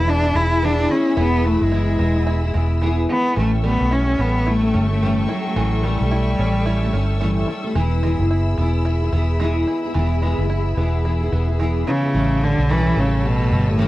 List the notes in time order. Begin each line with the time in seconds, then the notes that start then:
Already playing: E1 E3 G#3 E4 G#4 E5 B5 E6
0.00 B3
0.08 D4 E4
0.24 B3 E4 G#4
0.35 E1 E3 G#3 B3 E4 G#4
0.62 E3 B3 D4 E4 G#4
0.89 E3 G#3 B3 C#4 E4 G#4
1.17 E1 E3 B3 E4 G#4
1.44 E3 A3 B3 E4 G#4
1.62 F#1 G#3
1.71 E3 B3 E4 G#4
1.98 E1 E3 G#3 B3 E4 G#4
2.15 B3 E4 G#4
2.27 E4
2.43 B3 E4 G#4
2.54 E1 E3 G#3 B3 E4 G#4
2.81 E3 B3 E4 G#4
3.08 E3 G#3 B3 E4 G#4
3.36 A1 A2 E3 G3 A3 C#4 A4 G5 C#6 E6
3.64 A2 E3 G3 A3 B3 C#4 A4
3.80 B1 G3 A3 C#4 A4
3.91 C#4 E4
4.19 A1 G3 A3 B3 C#4 A4
4.46 G3 A3 C#4 E4 A4
4.62 G3 A3 C#4 A4
4.73 G1 G3 A3 C#4 A4
4.90 G3 A3 C#4 A4
5.02 A2 E3 G3 A3 C#4 A4
5.29 F#3 G3 A3 C#4 E4 A4
5.45 G3 A3 C#4 A4
5.56 A1 A2 E3 G3 A3 C#4 A4
5.83 A2 E3 G3 A3 C#4 A4
6.00 B1 G3 A3 C#4 A4
6.11 E4
6.39 A1 G3 A3 C#4 A4
6.66 G3 A3 C#4 E4 A4
6.82 G3 A3 C#4 A4
6.93 G1 G3 A3 C#4 A4
7.20 A2 E3 G3 A3 C#4 A4
7.48 G3 A3 C#4 E4 A4
7.64 G3 A3 C#4 A4
7.75 E1 E3 B3 E4 G#4 E5 B5
8.03 E3 G#3 B3 E4 G#4
8.19 F#1 B3 E4 G#4
8.30 E4
8.57 E1 E3 B3 E4 G#4
8.85 E3 B3 E4 G#4
9.01 B3 E4 G#4
9.13 E1 E3 B3 E4 G#4
9.40 E3 G#3 B3 E4 G#4
9.67 E3 B3 E4 G#4
9.83 B3 E4 G#4
9.94 E1 E3 B3 E4 G#4
10.22 E3 G#3 B3 E4 G#4
10.38 F#1 B3 E4 G#4
10.50 E4
10.77 E1 E3 B3 E4 G#4
11.05 E3 B3 E4 G#4
11.21 B3 E4 G#4
11.32 E1 E3 B3 E4 G#4
11.48 B3 E4 G#4
11.59 E3 G#3 B3 E4 G#4
11.86 C#3 E3 B3 E4 G#4
12.03 B3 E4 G#4
12.14 A1 A2 E3 G3 A3 C#4 G4 A4 C#5 A5 E6
12.41 D3 G3 A3 C#4 A4
12.58 B1
12.69 A2 E3 G3 A3 C#4 A4
12.96 A1 C#3 G3 A3 C#4 A4
13.12 G3 A3 C#4 A4
13.26 B2
13.39 G3 A3 C#4 A4
13.50 G1 G3 A3 C#4 A4
13.70 A2
13.78 A2 E3 G3 A3 C#4 A4